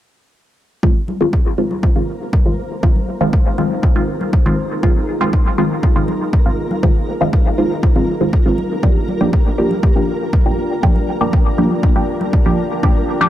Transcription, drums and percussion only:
0.83 kick
1.08 high conga
1.33 kick
1.71 high conga
1.83 kick
2.33 kick, high conga
2.83 kick
2.96 high conga
3.33 kick
3.58 high conga
3.83 kick
4.21 high conga
4.33 kick
4.83 kick, high conga
5.33 kick
5.46 high conga
5.83 kick
6.08 high conga
6.33 kick
6.71 high conga
6.83 kick
7.33 kick, high conga
7.83 kick
7.96 high conga
8.33 kick
8.58 high conga
8.83 kick
9.08 high conga
9.33 kick
9.71 high conga
9.83 kick
10.33 kick, high conga
10.83 kick
10.96 high conga
11.33 kick
11.58 high conga
11.83 kick
12.21 high conga
12.33 kick
12.83 kick, high conga

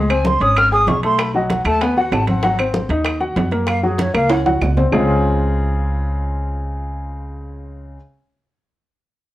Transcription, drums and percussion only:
0.10 high conga, high timbale, claves
0.25 high bongo, high conga, low timbale
0.41 high bongo, high conga, high timbale
0.57 high bongo, high conga, high timbale, claves
0.72 high bongo, high conga
0.87 high bongo, low bongo, high conga, high timbale, low timbale
1.03 high bongo, high timbale
1.19 high bongo, high conga, high timbale, claves
1.34 high conga
1.50 high bongo, high conga, high timbale, low timbale
1.65 high bongo, high conga, high timbale, claves
1.81 high bongo, high conga, high timbale
1.97 high bongo, high conga
2.12 high bongo, low bongo, high conga, high timbale, low timbale, claves
2.27 high bongo, high conga, high timbale
2.43 high bongo, high timbale
2.59 high conga, high timbale, claves
2.74 high bongo, high conga, low timbale
2.90 high bongo, high conga, high timbale
3.05 high bongo, high conga, high timbale, claves
3.21 high bongo, high conga
3.36 high bongo, low bongo, high conga, high timbale, low timbale
3.52 high bongo, high timbale
3.67 high bongo, high conga, high timbale, claves
3.84 high conga
3.99 high bongo, high conga, high timbale, low timbale
4.14 high bongo, high conga, high timbale, claves
4.30 high bongo, high conga, high timbale
4.46 high bongo, high conga, high timbale
4.61 high bongo, low bongo, low conga, low timbale, claves
4.77 high bongo, low conga, low timbale
4.92 low bongo, low conga, low timbale, claves

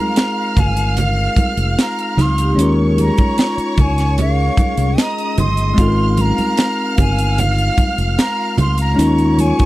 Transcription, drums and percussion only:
0.16 snare, closed hi-hat, muted conga
0.57 kick, closed hi-hat, high conga, low conga
0.77 closed hi-hat
0.97 closed hi-hat, low conga
1.36 kick, closed hi-hat, high conga
1.57 closed hi-hat
1.79 snare, closed hi-hat
1.99 closed hi-hat
2.18 snare, closed hi-hat, muted conga, high conga, low conga
2.38 closed hi-hat
2.59 closed hi-hat
2.98 closed hi-hat, high conga
3.18 kick, closed hi-hat, high conga
3.38 snare, closed hi-hat, muted conga
3.58 closed hi-hat
3.78 kick, closed hi-hat, high conga, low conga
3.98 snare, closed hi-hat
4.18 closed hi-hat, muted conga, low conga
4.57 kick, closed hi-hat, muted conga, high conga
4.77 closed hi-hat
4.98 snare, closed hi-hat
5.18 closed hi-hat
5.38 closed hi-hat, muted conga, high conga, low conga
5.57 closed hi-hat
5.78 kick, closed hi-hat, muted conga
6.17 closed hi-hat, high conga
6.38 closed hi-hat, high conga
6.57 snare, closed hi-hat, muted conga
6.98 kick, closed hi-hat, high conga, low conga
7.19 closed hi-hat
7.38 closed hi-hat, muted conga, low conga
7.58 closed hi-hat
7.78 kick, closed hi-hat, muted conga, high conga
7.98 closed hi-hat
8.18 snare, closed hi-hat, muted conga
8.58 closed hi-hat, muted conga, high conga, low conga
8.78 closed hi-hat
8.99 closed hi-hat, muted conga
9.18 closed hi-hat
9.38 closed hi-hat, muted conga, high conga
9.59 kick, closed hi-hat, high conga

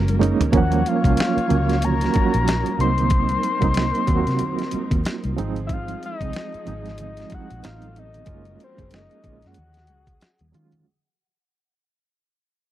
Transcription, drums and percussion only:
0.08 closed hi-hat, muted conga, high conga
0.21 closed hi-hat, mid tom
0.41 closed hi-hat, floor tom, low conga
0.53 kick, closed hi-hat
0.72 closed hi-hat, muted conga, high conga
0.86 closed hi-hat
1.04 kick, closed hi-hat, high conga
1.17 snare, closed hi-hat, muted conga
1.38 closed hi-hat, muted conga
1.50 closed hi-hat, low conga
1.69 snare, closed hi-hat
1.82 closed hi-hat, muted conga, low conga
2.01 snare, closed hi-hat
2.14 kick, closed hi-hat, high conga
2.34 closed hi-hat
2.48 snare, closed hi-hat
2.66 closed hi-hat, muted conga, high conga
2.80 closed hi-hat
2.98 closed hi-hat, low conga
3.10 kick, closed hi-hat
3.29 closed hi-hat, muted conga, high conga
3.43 closed hi-hat
3.62 kick, closed hi-hat, high conga
3.74 snare, closed hi-hat, muted conga
3.94 closed hi-hat, muted conga
4.07 kick, closed hi-hat, low conga
4.27 snare, closed hi-hat
4.39 closed hi-hat, muted conga, low conga
4.59 snare, closed hi-hat
4.71 closed hi-hat, high conga
4.91 kick, closed hi-hat
5.04 snare, closed hi-hat, muted conga
5.24 closed hi-hat, muted conga, high conga
5.38 closed hi-hat
5.56 closed hi-hat, low conga
5.69 kick, closed hi-hat, muted conga
5.88 closed hi-hat, high conga
6.03 closed hi-hat
6.21 kick, closed hi-hat, high conga
6.33 snare, closed hi-hat
6.53 closed hi-hat, muted conga
6.66 closed hi-hat, low conga
6.86 snare, closed hi-hat
6.98 closed hi-hat, muted conga, low conga
7.17 snare, closed hi-hat
7.30 kick, closed hi-hat, high conga
7.50 closed hi-hat
7.62 snare, closed hi-hat, muted conga
7.82 closed hi-hat, muted conga, high conga
7.96 closed hi-hat
8.14 closed hi-hat, low conga
8.26 kick, closed hi-hat, muted conga
8.45 closed hi-hat, high conga
8.60 closed hi-hat
8.78 kick, closed hi-hat, high conga
8.91 snare, closed hi-hat, muted conga
9.11 closed hi-hat
9.24 kick, closed hi-hat, low conga
9.42 snare, closed hi-hat
9.54 closed hi-hat
9.59 low conga
9.74 snare, closed hi-hat, muted conga
9.87 closed hi-hat, high conga
10.07 kick, closed hi-hat
10.21 snare, closed hi-hat
10.39 closed hi-hat, muted conga, high conga
10.54 closed hi-hat
10.72 closed hi-hat, low conga

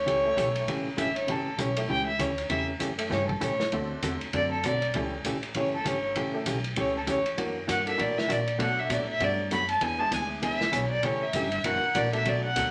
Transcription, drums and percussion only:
0.07 kick, ride
0.37 kick, hi-hat pedal, ride
0.56 ride
0.67 kick, ride
0.98 kick, hi-hat pedal, ride
1.16 ride
1.28 kick, ride
1.58 kick, hi-hat pedal, ride
1.77 ride
1.89 kick
2.19 kick, hi-hat pedal, ride
2.38 ride
2.50 kick, ride
2.80 kick, hi-hat pedal, ride
2.99 ride
3.11 kick, snare
3.29 kick
3.41 kick, hi-hat pedal, ride
3.60 snare
3.72 kick, ride
4.03 kick, hi-hat pedal, ride
4.21 ride
4.33 kick, ride
4.63 kick, hi-hat pedal, ride
4.82 ride
4.94 kick, ride
5.25 kick, hi-hat pedal, ride
5.43 ride
5.54 kick, ride
5.85 kick, hi-hat pedal, ride
6.16 kick, ride
6.46 kick, hi-hat pedal, ride
6.64 ride
6.76 kick, ride
7.07 kick, hi-hat pedal, ride
7.26 ride
7.38 kick, ride
7.68 kick, hi-hat pedal, ride
7.87 ride
7.99 kick, ride
8.18 snare
8.29 kick, hi-hat pedal, ride
8.47 ride
8.59 kick, ride
8.90 kick, hi-hat pedal, ride
9.20 kick, ride
9.51 kick, hi-hat pedal, ride
9.69 ride
9.81 kick, ride
10.12 kick, hi-hat pedal, ride
10.42 kick, ride
10.61 snare
10.73 kick, hi-hat pedal, ride
11.03 kick, ride
11.33 kick, hi-hat pedal, ride
11.52 ride
11.64 kick, ride
11.95 kick, hi-hat pedal, ride
12.13 ride
12.25 kick, ride
12.56 kick, hi-hat pedal, ride

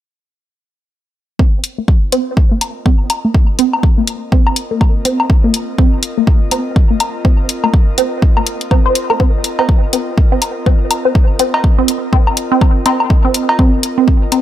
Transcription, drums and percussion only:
1.39 kick
1.64 closed hi-hat
1.88 kick
2.12 closed hi-hat
2.37 kick
2.61 closed hi-hat, low woodblock
2.86 kick
3.10 closed hi-hat, low woodblock
3.34 kick
3.59 closed hi-hat
3.73 low woodblock
3.83 kick
4.07 closed hi-hat
4.32 kick
4.47 low woodblock
4.56 closed hi-hat
4.81 kick, low woodblock
5.05 closed hi-hat
5.20 low woodblock
5.30 kick
5.54 closed hi-hat
5.78 kick
6.03 closed hi-hat
6.27 kick
6.51 closed hi-hat, low woodblock
6.76 kick
7.00 closed hi-hat, low woodblock
7.25 kick
7.49 closed hi-hat
7.64 low woodblock
7.74 kick
7.98 closed hi-hat
8.22 kick
8.37 low woodblock
8.47 closed hi-hat
8.61 closed hi-hat
8.71 kick, low woodblock
8.95 closed hi-hat
9.10 low woodblock
9.20 kick
9.44 closed hi-hat
9.59 cowbell
9.69 kick
9.93 closed hi-hat
10.18 kick
10.42 closed hi-hat, low woodblock
10.66 kick
10.91 closed hi-hat, low woodblock
11.15 kick
11.39 closed hi-hat
11.54 cowbell, low woodblock
11.64 kick
11.88 closed hi-hat
12.13 kick
12.27 low woodblock
12.37 closed hi-hat
12.61 kick, low woodblock
12.86 closed hi-hat, cowbell
13.00 low woodblock
13.10 kick
13.34 closed hi-hat
13.49 cowbell
13.59 kick
13.83 closed hi-hat
14.08 kick
14.32 closed hi-hat, low woodblock

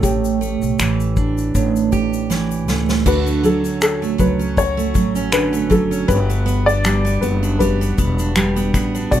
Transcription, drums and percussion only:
0.03 kick, shaker
0.25 shaker
0.42 shaker
0.62 shaker
0.79 finger snap, shaker
1.00 shaker
1.17 kick, shaker
1.38 shaker
1.55 kick, shaker
1.76 shaker
1.92 kick, shaker
2.13 shaker
2.31 snare, shaker
2.51 shaker
2.68 snare, shaker
2.89 snare, shaker
3.06 kick, crash, shaker
3.27 shaker
3.44 shaker
3.64 shaker
3.81 finger snap, shaker
4.04 shaker
4.19 kick, shaker
4.41 shaker
4.57 kick, shaker
4.79 shaker
4.95 kick, shaker
5.15 shaker
5.32 finger snap, shaker
5.54 shaker
5.71 kick, shaker
5.92 shaker
6.09 kick, shaker
6.10 shaker
6.30 shaker
6.47 shaker
6.69 shaker
6.84 finger snap, shaker
7.06 shaker
7.22 shaker
7.44 shaker
7.60 kick, shaker
7.82 shaker
7.98 kick, shaker
8.19 shaker
8.36 finger snap, shaker
8.57 shaker
8.74 finger snap, kick, shaker
8.95 shaker
9.12 kick, shaker

